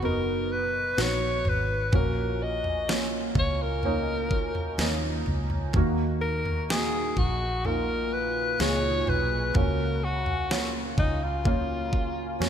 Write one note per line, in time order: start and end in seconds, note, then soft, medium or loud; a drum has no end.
0.00 0.93 F#1 medium
0.00 1.95 B2 medium
0.00 0.02 B3 medium
0.00 0.93 B3 medium
0.00 0.03 D#4 medium
0.00 0.93 D#4 medium
0.00 0.03 F#4 medium
0.00 0.93 F#4 medium
0.00 floor tom medium
0.05 0.54 A#4 loud
0.52 1.03 B4 medium
0.97 1.42 A#1 medium
0.97 1.88 B3 medium
0.97 1.88 D#4 medium
0.97 1.88 F#4 medium
0.97 snare loud
1.01 1.50 C#5 loud
1.45 1.90 G#1 medium
1.45 1.95 B4 medium
1.45 floor tom medium
1.92 3.32 A#1 medium
1.92 3.32 A#2 medium
1.92 2.83 A#3 medium
1.92 2.84 C#4 medium
1.92 2.84 F#4 medium
1.92 2.45 A#4 medium
1.92 kick medium
1.92 floor tom loud
2.43 3.10 D#5 medium
2.64 floor tom medium
2.88 3.79 A#3 medium
2.88 3.79 C#4 medium
2.88 3.79 F4 medium
2.88 snare loud
3.35 4.74 C#2 medium
3.35 3.64 C#5 medium
3.35 kick medium
3.35 floor tom medium
3.62 5.04 A#4 medium
3.83 4.74 A#3 medium
3.83 4.75 C#4 medium
3.83 4.75 D#4 medium
3.83 floor tom medium
4.31 kick medium
4.55 floor tom medium
4.78 5.23 D#2 medium
4.78 5.69 A#3 medium
4.78 5.70 C#4 medium
4.78 5.70 D#4 medium
4.78 snare loud
5.26 5.71 C#2 medium
5.26 floor tom medium
5.50 floor tom medium
5.73 7.13 D#2 loud
5.73 7.14 D#3 medium
5.73 6.65 A#3 medium
5.73 6.65 D#4 medium
5.73 6.66 F#4 medium
5.73 kick loud
5.73 floor tom loud
6.22 6.66 A#4 medium
6.45 floor tom medium
6.70 7.60 A#3 medium
6.70 7.60 D#4 medium
6.70 7.61 F#4 medium
6.70 7.19 G#4 medium
6.70 snare loud
7.17 8.56 A#1 medium
7.17 7.68 F#4 medium
7.17 kick medium
7.17 floor tom medium
7.65 8.55 A#2 medium
7.65 8.55 D#4 medium
7.65 8.56 F4 medium
7.65 8.15 A#4 loud
7.65 floor tom medium
8.14 8.63 B4 medium
8.60 9.04 C#2 medium
8.60 9.50 A#2 medium
8.60 9.50 D#4 medium
8.60 9.50 G#4 medium
8.60 9.11 C#5 loud
8.60 snare loud
9.07 9.52 B1 medium
9.07 9.58 B4 medium
9.07 floor tom medium
9.54 10.94 C#2 loud
9.54 10.94 C#3 medium
9.54 10.46 A#3 medium
9.54 10.46 C#4 medium
9.54 10.46 F#4 medium
9.54 10.06 A#4 medium
9.54 kick loud
9.54 floor tom medium
10.04 10.72 F#4 medium
10.26 floor tom medium
10.51 11.41 A#3 medium
10.51 11.41 C#4 medium
10.51 11.41 F4 medium
10.51 snare loud
10.98 12.37 C#2 medium
10.98 11.25 D#4 medium
10.98 kick loud
10.98 floor tom medium
11.24 12.49 F4 medium
11.45 12.36 A#3 medium
11.45 12.36 C#4 medium
11.45 12.36 F4 medium
11.45 kick medium
11.45 floor tom medium
11.93 kick medium
12.40 12.49 F2 medium
12.40 12.49 A#3 medium
12.40 12.49 C#4 medium
12.40 12.49 F#4 medium
12.40 snare loud